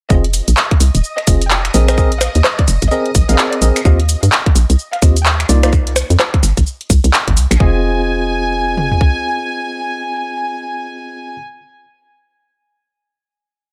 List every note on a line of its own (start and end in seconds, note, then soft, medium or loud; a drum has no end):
0.10 0.41 F1 loud
0.10 0.23 C4 medium
0.10 0.23 F4 medium
0.10 0.23 G#4 medium
0.10 5.74 D#5 medium
0.10 0.23 D#5 loud
0.10 0.30 D#5 loud
0.10 kick loud
0.10 shaker soft
0.24 closed hi-hat medium
0.33 open hi-hat loud
0.33 shaker medium
0.48 0.54 A#1 medium
0.48 closed hi-hat medium
0.48 shaker soft
0.57 clap loud
0.57 shaker soft
0.71 kick loud
0.71 closed hi-hat soft
0.80 0.91 C2 medium
0.80 open hi-hat loud
0.80 shaker medium
0.95 1.01 D#1 medium
0.95 closed hi-hat medium
0.95 shaker soft
1.04 shaker soft
1.18 1.37 D#5 loud
1.18 finger snap soft
1.18 closed hi-hat soft
1.27 1.70 F1 medium
1.27 1.40 C4 medium
1.27 1.40 F4 medium
1.27 1.40 G#4 medium
1.27 1.40 D#5 medium
1.27 kick loud
1.27 open hi-hat loud
1.27 shaker medium
1.42 closed hi-hat medium
1.42 shaker soft
1.51 1.71 G5 medium
1.51 clap loud
1.51 shaker soft
1.65 finger snap medium
1.65 closed hi-hat medium
1.74 2.29 A#1 loud
1.74 1.86 C4 medium
1.74 1.86 G#4 medium
1.74 1.86 A#4 medium
1.74 1.86 D#5 medium
1.74 open hi-hat loud
1.74 shaker medium
1.88 1.96 C4 medium
1.88 1.96 G#4 medium
1.88 1.96 A#4 medium
1.88 1.96 D#5 medium
1.88 finger snap medium
1.88 closed hi-hat medium
1.88 high bongo medium
1.88 shaker soft
1.98 2.10 C4 medium
1.98 2.10 G#4 medium
1.98 2.10 A#4 medium
1.98 2.10 D#5 medium
1.98 kick loud
1.98 shaker soft
2.12 closed hi-hat medium
2.21 2.41 F5 medium
2.21 finger snap medium
2.21 open hi-hat loud
2.21 high bongo medium
2.21 shaker medium
2.35 2.42 D#2 medium
2.35 closed hi-hat medium
2.35 shaker soft
2.44 clap loud
2.44 high bongo medium
2.44 shaker soft
2.59 2.77 D5 medium
2.59 kick loud
2.59 closed hi-hat soft
2.68 2.78 F1 medium
2.68 finger snap soft
2.68 open hi-hat medium
2.68 shaker medium
2.82 2.89 G#1 medium
2.82 kick medium
2.82 closed hi-hat medium
2.82 shaker soft
2.91 3.10 C4 loud
2.91 3.10 G#4 medium
2.91 3.10 A#4 medium
2.91 3.10 D#5 loud
2.91 3.12 D#5 loud
2.91 shaker soft
3.06 closed hi-hat soft
3.15 3.25 A#1 medium
3.15 kick loud
3.15 open hi-hat loud
3.15 shaker medium
3.29 3.36 A#1 loud
3.29 3.60 C4 medium
3.29 3.60 G#4 medium
3.29 3.60 A#4 medium
3.29 3.60 D#5 medium
3.29 3.40 F5 medium
3.29 closed hi-hat medium
3.29 shaker soft
3.38 clap loud
3.38 shaker soft
3.53 3.71 D5 medium
3.53 closed hi-hat medium
3.62 3.72 A#1 medium
3.62 3.80 C4 medium
3.62 3.80 G#4 medium
3.62 3.80 A#4 medium
3.62 3.80 D#5 medium
3.62 open hi-hat medium
3.62 shaker medium
3.76 finger snap medium
3.76 closed hi-hat medium
3.76 shaker soft
3.85 4.16 D#2 loud
3.85 3.98 C4 medium
3.85 3.98 F4 medium
3.85 3.98 G4 medium
3.85 3.98 D#5 loud
3.85 4.05 F5 loud
3.85 kick loud
3.85 shaker soft
4.00 closed hi-hat medium
4.09 open hi-hat loud
4.09 shaker medium
4.23 4.29 G2 medium
4.23 closed hi-hat medium
4.23 shaker soft
4.32 clap loud
4.32 shaker soft
4.46 kick loud
4.46 closed hi-hat soft
4.55 4.66 A#1 medium
4.55 open hi-hat medium
4.55 shaker medium
4.70 4.76 C2 medium
4.70 closed hi-hat medium
4.70 shaker soft
4.79 shaker soft
4.93 5.12 F5 medium
4.93 finger snap soft
4.93 closed hi-hat soft
5.02 5.45 D#2 medium
5.02 5.15 C4 medium
5.02 5.15 F4 medium
5.02 5.15 G4 medium
5.02 5.15 D#5 medium
5.02 kick loud
5.02 open hi-hat loud
5.02 shaker medium
5.17 closed hi-hat medium
5.17 shaker soft
5.26 5.46 G5 medium
5.26 clap loud
5.26 shaker soft
5.40 finger snap medium
5.40 closed hi-hat medium
5.49 6.04 C2 loud
5.49 5.61 A#3 medium
5.49 5.61 D#4 medium
5.49 5.61 F4 medium
5.49 5.61 D5 loud
5.49 open hi-hat medium
5.49 shaker medium
5.63 5.71 A#3 medium
5.63 5.71 D#4 medium
5.63 5.70 F4 medium
5.63 5.71 D5 medium
5.63 finger snap medium
5.63 closed hi-hat medium
5.63 high bongo medium
5.63 shaker soft
5.73 kick loud
5.73 shaker soft
5.87 closed hi-hat soft
5.96 finger snap medium
5.96 open hi-hat loud
5.96 high bongo medium
5.96 shaker medium
6.10 6.17 F2 medium
6.10 closed hi-hat medium
6.10 shaker soft
6.20 clap loud
6.20 high bongo medium
6.20 shaker soft
6.34 kick loud
6.34 closed hi-hat soft
6.43 6.53 G1 medium
6.43 finger snap soft
6.43 open hi-hat medium
6.43 shaker medium
6.57 6.64 A#1 medium
6.57 kick medium
6.57 closed hi-hat medium
6.57 shaker soft
6.67 shaker soft
6.81 closed hi-hat soft
6.90 7.00 C2 medium
6.90 kick loud
6.90 open hi-hat loud
6.90 shaker medium
7.04 7.11 C2 loud
7.04 closed hi-hat medium
7.04 shaker soft
7.13 clap loud
7.13 shaker soft
7.28 7.38 G1 medium
7.28 kick medium
7.28 closed hi-hat medium
7.37 7.47 C2 loud
7.37 open hi-hat medium
7.37 shaker medium
7.51 7.57 A#1 loud
7.51 finger snap medium
7.51 closed hi-hat medium
7.51 shaker soft
7.60 8.97 F1 loud
7.60 11.35 C4 medium
7.60 11.35 F4 medium
7.60 11.35 G#4 medium
7.60 11.35 D#5 medium
7.60 11.35 G#5 loud
7.60 kick loud
8.77 mid tom medium
8.92 floor tom medium
9.01 kick medium